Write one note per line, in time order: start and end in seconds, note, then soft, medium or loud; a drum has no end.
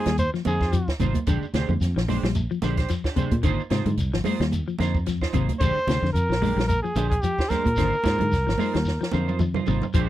0.00 0.15 G#4 medium
0.05 0.29 D#2 medium
0.05 0.23 G3 medium
0.05 snare medium
0.05 closed hi-hat medium
0.05 shekere soft
0.18 0.31 C5 loud
0.18 closed hi-hat medium
0.18 high conga medium
0.18 shekere medium
0.34 0.41 F3 medium
0.34 snare soft
0.34 shekere soft
0.45 0.91 F2 medium
0.45 0.63 D3 medium
0.45 0.61 A#3 medium
0.45 0.61 D#4 medium
0.45 0.61 F4 medium
0.45 0.97 G#4 medium
0.45 0.60 C5 medium
0.45 closed hi-hat medium
0.45 high conga medium
0.45 shekere medium
0.61 0.77 D#4 soft
0.61 0.76 F4 soft
0.61 0.76 C5 medium
0.61 kick medium
0.61 snare soft
0.61 shekere soft
0.73 0.89 F3 medium
0.73 closed hi-hat medium
0.73 shekere loud
0.88 kick medium
0.88 snare medium
0.88 shekere soft
1.00 1.12 G#1 loud
1.00 1.17 C3 medium
1.00 1.17 A#3 medium
1.00 1.18 D#4 medium
1.00 1.18 F4 medium
1.00 1.18 C5 medium
1.00 kick medium
1.00 closed hi-hat medium
1.00 high conga medium
1.00 low conga medium
1.00 shekere medium
1.14 kick medium
1.14 closed hi-hat medium
1.14 high conga medium
1.14 shekere soft
1.26 1.40 A#1 medium
1.26 1.44 D3 medium
1.26 1.44 G#3 medium
1.26 1.45 D4 medium
1.26 1.45 G4 medium
1.26 muted clean electric guitar stroke medium
1.26 kick medium
1.26 closed hi-hat medium
1.26 shekere medium
1.42 muted fingered electric bass stroke soft
1.42 shekere soft
1.53 1.66 D2 loud
1.53 1.64 C3 medium
1.53 1.72 G#3 medium
1.53 1.72 D4 medium
1.53 1.72 G4 medium
1.53 1.72 C5 medium
1.53 snare medium
1.53 closed hi-hat soft
1.53 high conga medium
1.53 shekere medium
1.69 1.79 F2 medium
1.69 1.86 D3 medium
1.69 high conga medium
1.69 low conga medium
1.69 shekere soft
1.81 1.93 F2 medium
1.81 snare soft
1.81 closed hi-hat medium
1.81 shekere medium
1.96 2.19 A#1 medium
1.96 2.04 F3 medium
1.96 snare medium
1.96 shekere soft
2.08 2.26 G#3 medium
2.08 2.18 G#3 medium
2.08 2.26 D4 medium
2.08 2.26 G4 medium
2.08 2.26 C5 medium
2.08 snare soft
2.08 open hi-hat medium
2.08 high conga medium
2.08 low conga medium
2.08 shekere medium
2.23 2.46 A#1 medium
2.23 2.40 G3 medium
2.23 snare medium
2.23 shekere soft
2.35 closed hi-hat medium
2.35 high conga medium
2.35 shekere medium
2.51 2.58 F3 medium
2.51 shekere soft
2.62 2.85 A#1 medium
2.62 2.80 D3 medium
2.62 2.78 G#3 medium
2.62 2.78 D4 medium
2.62 2.78 G4 medium
2.62 2.77 C5 medium
2.62 snare soft
2.62 closed hi-hat medium
2.62 high conga loud
2.62 shekere medium
2.77 2.93 D4 soft
2.77 2.93 G4 medium
2.77 2.93 C5 medium
2.77 kick medium
2.77 snare soft
2.77 closed hi-hat medium
2.77 shekere soft
2.88 3.06 F3 medium
2.88 snare soft
2.88 closed hi-hat medium
2.88 shekere medium
3.04 3.16 D4 soft
3.04 3.16 G4 medium
3.04 muted clean electric guitar stroke medium
3.04 kick medium
3.04 snare medium
3.04 shekere soft
3.16 3.33 C3 medium
3.16 3.34 G#3 medium
3.16 3.34 D4 medium
3.16 3.34 G4 medium
3.16 3.35 C5 medium
3.16 kick medium
3.16 closed hi-hat medium
3.16 high conga medium
3.16 low conga medium
3.16 shekere medium
3.31 3.42 A#2 medium
3.31 kick medium
3.31 closed hi-hat medium
3.31 high conga medium
3.31 shekere soft
3.43 3.56 G#1 loud
3.43 3.60 D3 medium
3.43 3.61 A#3 medium
3.43 3.61 D#4 medium
3.43 3.61 F4 medium
3.43 3.62 C5 loud
3.43 kick medium
3.43 closed hi-hat medium
3.43 shekere medium
3.60 shekere soft
3.70 3.83 G#2 medium
3.70 3.80 C3 medium
3.70 3.88 A#3 medium
3.70 3.88 D#4 medium
3.70 3.89 F4 medium
3.70 3.89 C5 medium
3.70 snare medium
3.70 closed hi-hat soft
3.70 high conga medium
3.70 shekere medium
3.85 3.96 G#2 loud
3.85 4.03 D3 medium
3.85 closed hi-hat soft
3.85 low conga medium
3.85 shekere soft
3.97 4.10 C2 loud
3.97 closed hi-hat medium
3.97 shekere medium
4.13 4.23 G#1 medium
4.13 4.21 F3 medium
4.13 snare medium
4.13 shekere soft
4.24 4.35 G#3 medium
4.24 4.42 A#3 medium
4.24 4.43 D#4 medium
4.24 4.43 F4 medium
4.24 4.43 C5 medium
4.24 muted fingered electric bass stroke soft
4.24 open hi-hat medium
4.24 high conga medium
4.24 low conga medium
4.24 shekere medium
4.40 4.62 D#2 loud
4.40 4.57 G3 medium
4.40 snare medium
4.40 closed hi-hat soft
4.40 shekere soft
4.52 closed hi-hat medium
4.52 high conga medium
4.52 shekere medium
4.68 4.75 F3 medium
4.68 shekere soft
4.79 5.25 F2 loud
4.79 4.97 D3 medium
4.79 4.97 A#3 medium
4.79 4.97 D#4 medium
4.79 4.97 F4 medium
4.79 4.97 C5 medium
4.79 snare soft
4.79 closed hi-hat medium
4.79 high conga medium
4.79 shekere medium
4.95 kick medium
4.95 shekere soft
5.06 5.23 F3 medium
5.06 snare soft
5.06 closed hi-hat medium
5.06 shekere medium
5.21 5.32 D#4 soft
5.21 5.32 F4 soft
5.21 5.33 C5 medium
5.21 kick medium
5.21 snare medium
5.21 shekere soft
5.33 5.46 G#1 loud
5.33 5.51 C3 medium
5.33 5.51 A#3 medium
5.33 5.51 D#4 medium
5.33 5.51 F4 medium
5.33 5.51 C5 medium
5.33 kick medium
5.33 closed hi-hat medium
5.33 low conga medium
5.33 shekere medium
5.49 kick medium
5.49 closed hi-hat medium
5.49 high conga medium
5.49 shekere soft
5.60 5.73 A#1 medium
5.60 5.77 D3 medium
5.60 5.78 G#3 medium
5.60 5.78 D4 medium
5.60 5.78 G4 medium
5.60 6.11 C5 loud
5.60 5.79 C5 medium
5.60 kick loud
5.60 closed hi-hat medium
5.60 shekere medium
5.78 shekere soft
5.87 6.00 D2 medium
5.87 5.97 C3 medium
5.87 6.05 G#3 medium
5.87 6.05 D4 medium
5.87 6.05 G4 medium
5.87 6.06 C5 medium
5.87 snare medium
5.87 closed hi-hat medium
5.87 high conga medium
5.87 shekere medium
6.02 6.12 F2 medium
6.02 6.20 D3 medium
6.02 snare soft
6.02 shekere soft
6.13 6.27 F2 medium
6.13 6.64 A#4 medium
6.13 closed hi-hat medium
6.13 shekere medium
6.29 6.52 A#1 medium
6.29 6.37 F3 medium
6.29 snare medium
6.29 shekere soft
6.42 6.59 G#3 medium
6.42 6.51 G#3 medium
6.42 6.60 D4 medium
6.42 6.60 G4 medium
6.42 muted clean electric guitar stroke medium
6.42 snare soft
6.42 open hi-hat medium
6.42 high conga medium
6.42 low conga medium
6.42 shekere medium
6.56 6.79 A#1 medium
6.56 6.74 G3 medium
6.56 snare medium
6.56 shekere soft
6.68 6.82 A#4 loud
6.68 closed hi-hat medium
6.68 high conga medium
6.68 shekere medium
6.82 6.92 F3 medium
6.82 7.08 G#4 medium
6.82 shekere soft
6.95 7.18 A#1 medium
6.95 7.13 D3 medium
6.95 7.14 G#3 medium
6.95 7.14 D4 medium
6.95 7.14 G4 medium
6.95 7.14 C5 medium
6.95 closed hi-hat medium
6.95 high conga loud
6.95 shekere medium
7.09 7.23 G#4 medium
7.09 kick medium
7.09 closed hi-hat medium
7.09 shekere soft
7.22 7.41 F3 medium
7.22 7.51 G4 medium
7.22 closed hi-hat medium
7.22 shekere medium
7.39 7.49 D4 soft
7.39 7.49 G4 soft
7.39 7.50 C5 soft
7.39 kick medium
7.39 snare medium
7.39 shekere soft
7.49 7.68 G#3 medium
7.49 7.68 D4 medium
7.49 7.68 G4 medium
7.49 9.40 A#4 loud
7.49 7.68 C5 medium
7.49 kick medium
7.49 snare soft
7.49 closed hi-hat soft
7.49 high conga medium
7.49 low conga medium
7.49 shekere medium
7.65 7.76 A#2 medium
7.65 kick medium
7.65 closed hi-hat medium
7.65 high conga medium
7.65 shekere soft
7.76 7.90 G#1 loud
7.76 7.95 D3 medium
7.76 7.95 A#3 medium
7.76 7.95 D#4 medium
7.76 7.95 F4 medium
7.76 7.95 C5 medium
7.76 kick medium
7.76 snare soft
7.76 closed hi-hat medium
7.76 shekere loud
7.93 shekere soft
8.04 8.18 G#2 loud
8.04 8.22 A#3 medium
8.04 8.22 D#4 medium
8.04 8.22 F4 medium
8.04 8.23 C5 medium
8.04 kick medium
8.04 snare medium
8.04 closed hi-hat medium
8.04 high conga loud
8.04 shekere medium
8.19 8.30 G#2 medium
8.19 8.37 D3 medium
8.19 closed hi-hat medium
8.19 low conga medium
8.19 shekere soft
8.32 8.45 C2 medium
8.32 snare soft
8.32 closed hi-hat medium
8.32 shekere medium
8.47 8.57 G#1 medium
8.47 8.54 F3 medium
8.47 snare medium
8.47 shekere soft
8.58 8.69 G#3 medium
8.58 8.76 A#3 medium
8.58 8.77 D#4 medium
8.58 8.77 F4 medium
8.58 8.77 C5 medium
8.58 muted fingered electric bass stroke soft
8.58 open hi-hat medium
8.58 high conga medium
8.58 low conga medium
8.58 shekere medium
8.74 8.97 D#2 medium
8.74 8.91 G3 medium
8.74 snare medium
8.74 closed hi-hat medium
8.74 shekere soft
8.85 snare soft
8.85 shekere medium
9.01 9.08 F3 medium
9.01 snare medium
9.01 shekere soft
9.11 9.59 F2 medium
9.11 9.30 D3 medium
9.11 9.28 A#3 medium
9.11 9.28 D#4 medium
9.11 9.28 F4 medium
9.11 9.27 C5 medium
9.11 high tom medium
9.11 high conga medium
9.11 shekere medium
9.28 9.44 D#4 soft
9.28 9.44 F4 soft
9.28 9.43 C5 medium
9.28 high tom medium
9.28 shekere soft
9.39 9.57 F3 medium
9.39 mid tom medium
9.39 high conga medium
9.39 shekere medium
9.54 9.66 D#4 soft
9.54 9.66 F4 medium
9.54 9.67 C5 medium
9.54 mid tom medium
9.54 low conga loud
9.54 shekere soft
9.66 9.80 G#1 medium
9.66 9.84 C3 medium
9.66 9.85 A#3 medium
9.66 9.85 D#4 medium
9.66 9.85 F4 medium
9.66 9.85 C5 medium
9.66 floor tom medium
9.66 low conga medium
9.66 shekere medium
9.82 floor tom medium
9.82 low conga medium
9.82 shekere soft
9.94 10.07 A#1 loud
9.94 10.09 F3 medium
9.94 10.09 G#3 loud
9.94 10.09 D4 loud
9.94 10.09 G4 loud
9.94 10.09 C5 loud
9.94 kick medium
9.94 closed hi-hat medium
9.94 shekere loud